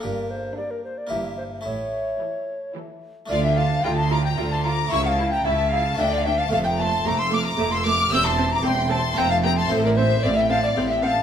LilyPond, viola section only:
\new Staff \with { instrumentName = "Viola section" } { \time 3/4 \key d \minor \tempo 4 = 112 r4 g4 e4 | r4 e4 e4 | f'8 f'8 f'8 f'8 f'8 f'8 | e'8 e'8 e'8 e'8 d'8 d'8 |
a8 a8 a8 a8 a8 a8 | c'8 c'8 c'8 c'8 c'8 c'8 | c'8 c'8 c'8 c'8 c'8 c'8 | }